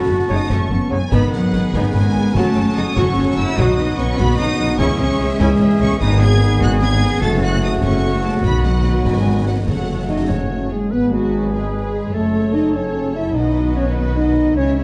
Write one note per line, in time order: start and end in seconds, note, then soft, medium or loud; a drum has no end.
0.00 0.29 A3 medium
0.00 0.49 F#4 loud
0.00 0.90 A5 medium
0.00 0.89 C#6 medium
0.09 0.17 F#1 soft
0.09 0.17 F#2 medium
0.09 0.17 A3 medium
0.28 0.38 F#1 medium
0.28 0.38 F#2 soft
0.28 0.36 C#3 medium
0.28 0.36 F#3 medium
0.28 0.38 A3 medium
0.28 0.37 A3 medium
0.28 0.49 D#4 medium
0.28 0.37 F#4 medium
0.28 0.37 C#5 medium
0.28 0.49 D#6 medium
0.49 0.58 F#1 medium
0.49 0.58 F#2 medium
0.49 0.69 A3 medium
0.49 0.91 C#4 medium
0.49 0.69 C#4 medium
0.49 0.92 C#6 medium
0.49 concert bass drum medium
0.49 snare medium
0.71 0.79 F#1 medium
0.71 0.80 F#2 medium
0.71 0.79 A3 medium
0.71 0.92 B3 medium
0.88 1.00 F#1 medium
0.88 0.97 C#3 medium
0.88 0.97 F#3 medium
0.88 1.00 G#3 medium
0.88 1.00 A3 medium
0.88 1.00 C#4 medium
0.88 0.99 C#5 medium
0.88 1.12 G#5 medium
0.93 1.01 F#2 medium
1.09 1.21 G#1 medium
1.09 1.69 D#3 medium
1.09 1.68 B3 medium
1.09 1.31 B3 medium
1.09 1.31 D#4 medium
1.09 2.31 G#4 medium
1.09 2.31 B4 medium
1.09 1.70 B4 medium
1.09 1.32 B5 loud
1.09 concert bass drum medium
1.09 snare medium
1.09 crash soft
1.13 1.33 B3 medium
1.33 1.41 G#1 medium
1.33 1.74 F#3 medium
1.33 1.42 B3 medium
1.33 1.73 F#5 medium
1.33 snare soft
1.53 1.62 G#1 medium
1.53 1.63 G#3 medium
1.53 1.62 B3 medium
1.53 snare medium
1.72 1.82 G#1 medium
1.72 2.33 D#3 medium
1.72 1.94 G#3 medium
1.72 2.33 B3 medium
1.72 1.93 B3 medium
1.72 1.94 D#4 medium
1.72 2.36 B4 medium
1.72 1.92 G#5 medium
1.72 concert bass drum medium
1.72 snare medium
1.93 2.02 G#1 medium
1.93 2.35 G#3 medium
1.93 2.04 B3 medium
1.93 2.34 G#5 loud
2.14 2.22 G#1 medium
2.14 2.25 G#3 medium
2.14 2.25 B3 medium
2.34 2.42 F#1 medium
2.34 2.96 F#3 medium
2.34 2.55 F#3 medium
2.34 2.76 A3 medium
2.34 2.95 C#4 medium
2.34 2.96 F#4 medium
2.34 2.55 F#4 medium
2.34 3.55 A4 medium
2.34 3.55 C#5 medium
2.34 2.76 A5 medium
2.34 concert bass drum medium
2.34 snare medium
2.56 2.64 F#1 soft
2.56 2.64 F#3 medium
2.56 2.65 C#4 medium
2.76 2.85 F#1 medium
2.76 2.85 F#3 soft
2.76 2.84 A3 medium
2.76 2.84 D#4 medium
2.76 2.97 D#6 loud
2.95 3.05 F#1 medium
2.95 3.15 F#3 medium
2.95 3.56 F#3 medium
2.95 3.36 C#4 medium
2.95 3.56 C#4 medium
2.95 3.56 F#4 medium
2.95 3.15 F#4 medium
2.95 3.36 C#6 medium
2.95 concert bass drum medium
2.95 snare medium
3.17 3.25 F#1 medium
3.17 3.25 F#3 medium
3.17 3.25 C#4 medium
3.37 3.45 F#1 medium
3.37 3.45 F#3 medium
3.37 3.45 A3 medium
3.37 3.57 E4 medium
3.37 3.57 E6 loud
3.56 3.65 B1 medium
3.56 3.76 F#3 loud
3.56 4.18 F#3 medium
3.56 4.18 B3 medium
3.56 3.98 D#4 medium
3.56 4.17 F#4 medium
3.56 3.76 F#4 medium
3.56 4.77 B4 medium
3.56 4.79 D#5 medium
3.56 3.97 D#6 medium
3.56 concert bass drum medium
3.56 snare medium
3.78 3.86 B1 medium
3.78 3.87 F#3 medium
3.78 3.87 D#4 medium
3.78 snare medium
3.97 4.06 B1 medium
3.97 4.06 F#3 medium
3.97 4.06 B3 medium
3.97 4.17 C#4 medium
3.97 4.18 C#6 loud
3.97 snare medium
4.17 4.26 B1 loud
4.17 4.37 F#3 medium
4.17 4.79 F#3 medium
4.17 4.38 B3 loud
4.17 4.78 B3 medium
4.17 4.37 F#4 medium
4.17 4.80 F#4 medium
4.17 4.38 B5 loud
4.17 concert bass drum medium
4.17 snare medium
4.37 4.47 B1 medium
4.37 4.47 F#3 medium
4.37 4.78 D#4 loud
4.37 4.47 D#4 medium
4.37 4.77 D#6 loud
4.59 4.67 B1 medium
4.59 4.67 F#3 medium
4.59 4.67 B3 medium
4.78 4.87 C#2 medium
4.78 5.40 E3 medium
4.78 5.40 G#3 medium
4.78 4.87 C#4 loud
4.78 4.98 C#4 medium
4.78 4.98 E4 loud
4.78 5.97 G#4 medium
4.78 5.39 G#4 medium
4.78 6.00 E5 medium
4.78 4.97 C#6 loud
4.78 concert bass drum medium
4.78 snare medium
4.98 5.08 C#2 medium
4.98 5.38 C#4 medium
4.98 5.09 C#4 medium
4.98 5.38 C#6 loud
5.19 5.27 C#2 medium
5.19 5.28 G#3 medium
5.19 5.29 C#4 medium
5.39 5.47 C#2 medium
5.39 6.00 E3 medium
5.39 5.60 G#3 medium
5.39 6.00 G#3 medium
5.39 5.59 C#4 loud
5.39 5.59 E4 medium
5.39 5.99 G#4 medium
5.39 5.47 G#5 loud
5.39 concert bass drum medium
5.39 snare medium
5.60 5.68 C#2 medium
5.60 5.69 C#4 medium
5.80 5.88 C#2 medium
5.80 5.90 G#3 medium
5.80 5.99 C#4 medium
5.80 5.90 C#4 medium
5.80 5.99 C#6 loud
5.99 6.54 G#1 medium
5.99 7.17 D#3 medium
5.99 6.20 G#3 medium
5.99 7.17 B3 medium
5.99 6.20 D#4 loud
5.99 6.20 D#4 medium
5.99 7.17 G#4 medium
5.99 6.20 B4 medium
5.99 6.20 D#6 loud
5.99 concert bass drum medium
5.99 snare medium
5.99 crash soft
6.20 6.41 B3 medium
6.20 6.61 G#4 loud
6.20 6.41 G#4 medium
6.20 6.41 D#5 medium
6.20 6.60 G#6 loud
6.20 snare medium
6.40 6.61 G#3 medium
6.40 6.61 D#4 medium
6.40 6.61 B4 medium
6.40 snare medium
6.60 7.14 G#1 medium
6.60 6.81 B3 medium
6.60 6.81 F#4 loud
6.60 6.81 G#4 medium
6.60 6.81 D#5 medium
6.60 6.70 F#6 loud
6.60 concert bass drum medium
6.60 snare medium
6.81 7.00 G#3 medium
6.81 7.00 D#4 medium
6.81 7.21 G#4 loud
6.81 7.00 B4 medium
6.81 7.21 G#6 loud
7.01 7.22 B3 medium
7.01 7.22 G#4 medium
7.01 7.22 D#5 medium
7.21 7.75 F#1 medium
7.21 8.41 C#3 medium
7.21 8.43 A3 medium
7.21 7.41 A3 medium
7.21 7.40 F#4 medium
7.21 9.50 F#4 medium
7.21 7.41 F#4 medium
7.21 7.41 A4 loud
7.21 7.41 C#5 medium
7.21 7.29 A6 loud
7.21 concert bass drum medium
7.21 snare medium
7.41 7.62 F#3 medium
7.41 7.62 C#4 medium
7.41 7.62 F#4 medium
7.41 7.62 A4 medium
7.41 7.63 F#5 medium
7.41 7.62 F#6 loud
7.61 7.82 A3 medium
7.61 7.70 D#4 medium
7.61 7.82 F#4 medium
7.61 7.82 C#5 medium
7.61 7.71 D#6 loud
7.81 8.36 F#1 medium
7.81 8.02 F#3 medium
7.81 8.21 C#4 medium
7.81 8.02 C#4 medium
7.81 8.02 A4 medium
7.81 8.03 F#5 medium
7.81 8.23 C#6 medium
7.81 concert bass drum medium
7.81 snare medium
8.03 8.22 A3 medium
8.03 8.22 F#4 medium
8.03 8.22 C#5 medium
8.23 8.42 F#3 medium
8.23 8.43 A3 medium
8.23 8.44 C#4 medium
8.23 8.43 A4 medium
8.23 8.43 F#5 medium
8.23 8.32 A5 medium
8.42 9.00 B1 medium
8.42 9.64 D#3 medium
8.42 9.63 F#3 medium
8.42 9.65 B3 medium
8.42 8.64 B3 medium
8.42 9.63 F#4 medium
8.42 9.63 B4 medium
8.42 9.63 D#5 medium
8.42 8.63 B5 loud
8.42 concert bass drum medium
8.42 snare medium
8.64 9.05 F#3 medium
8.64 9.04 F#5 medium
8.64 snare soft
8.84 snare medium
9.05 9.67 G#1 medium
9.05 9.46 G#3 medium
9.05 9.46 G#5 medium
9.05 concert bass drum medium
9.05 snare medium
9.46 9.66 F#3 medium
9.46 9.54 F#5 medium
9.66 10.69 F#1 medium
9.66 10.69 C#3 medium
9.66 10.28 F#3 medium
9.66 10.69 F#3 medium
9.66 10.71 A3 medium
9.66 10.69 F#4 medium
9.66 10.69 A4 medium
9.66 10.71 C#5 medium
9.66 10.08 F#5 medium
9.66 concert bass drum medium
9.66 snare medium
10.08 10.28 D#4 medium
10.08 10.30 D#5 medium
10.08 10.28 D#5 medium
10.28 10.71 C#4 medium
10.28 10.70 C#5 medium
10.28 10.71 C#5 medium
10.28 concert bass drum medium
10.28 snare medium
10.70 10.92 G#3 medium
10.70 10.91 G#4 medium
10.70 10.92 G#4 medium
10.91 12.10 G#1 medium
10.91 12.10 G#2 medium
10.91 12.10 D#3 medium
10.91 12.10 G#3 medium
10.91 11.13 B3 medium
10.91 12.10 G#4 medium
10.91 11.11 B4 medium
10.91 11.12 B4 medium
10.91 12.10 B4 medium
11.12 11.54 F#3 medium
11.12 11.53 F#4 medium
11.12 11.52 F#4 medium
11.52 11.72 G#3 medium
11.52 11.72 G#4 medium
11.52 12.10 B4 medium
11.72 12.13 G#3 medium
11.72 12.15 G#4 medium
11.72 12.13 G#4 medium
12.13 13.33 F#1 medium
12.13 13.33 F#2 medium
12.13 13.32 C#3 medium
12.13 14.53 F#3 medium
12.13 12.54 A3 medium
12.13 12.54 A4 medium
12.13 13.31 A4 medium
12.13 12.54 A4 medium
12.13 13.34 A4 medium
12.13 12.75 C#5 medium
12.13 13.36 C#5 medium
12.53 12.75 D#4 medium
12.53 12.74 D#5 medium
12.53 12.60 D#5 medium
12.73 13.16 C#4 medium
12.73 13.34 A4 medium
12.73 13.14 C#5 medium
12.73 13.15 C#5 medium
13.15 13.36 E4 medium
13.15 13.21 E5 medium
13.15 13.36 E5 medium
13.35 14.54 B1 medium
13.35 14.55 B2 medium
13.35 14.53 D#3 medium
13.35 13.76 D#4 medium
13.35 14.57 F#4 medium
13.35 14.53 B4 medium
13.35 14.55 B4 medium
13.35 13.78 D#5 medium
13.35 13.75 D#5 medium
13.35 14.55 D#5 medium
13.76 13.85 C#4 medium
13.76 13.98 C#5 medium
13.76 13.96 C#5 medium
13.96 14.17 B3 medium
13.96 14.18 B4 medium
13.96 14.16 B4 medium
14.16 14.56 D#4 medium
14.16 14.55 D#5 medium
14.16 14.58 D#5 medium
14.56 14.84 C#2 medium
14.56 14.84 C#3 medium
14.56 14.84 E3 medium
14.56 14.84 G#3 medium
14.56 14.77 C#4 medium
14.56 14.84 E4 medium
14.56 14.84 G#4 medium
14.56 14.76 C#5 medium
14.56 14.84 C#5 medium
14.56 14.75 C#5 medium
14.56 14.84 E5 medium
14.76 14.84 C#4 medium
14.76 14.84 C#5 medium